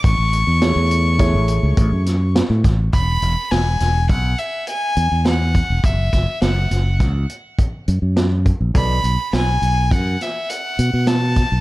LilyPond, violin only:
\new Staff \with { instrumentName = "Violin" } { \time 5/4 \key e \mixolydian \tempo 4 = 103 cis'''1 r4 | b''4 gis''4 fis''8 e''8 gis''4 fis''4 | e''4 fis''4 r2. | b''4 gis''4 fis''8 e''8 fis''4 a''4 | }